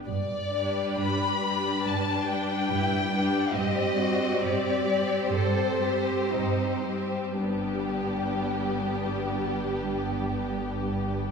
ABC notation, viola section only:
X:1
M:4/4
L:1/8
Q:1/4=62
K:G
V:1 name="Viola section"
z [G,D]2 [G,D]2 [G,D]2 [G,D] | [G,C] [G,C]2 [G,C]2 [G,C]2 [G,C] | [G,B,]8 |]